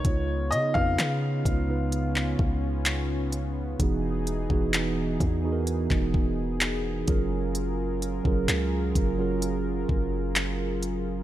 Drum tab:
HH |x-x-x-x-x---x-x-|x-x-x-x-x---x-x-|x-x-x-x-x---x-x-|
CP |----x----x--x---|----x----x--x---|----x-------x---|
BD |o--o--o---o-----|o--o--o--oo---o-|---o--o---o-----|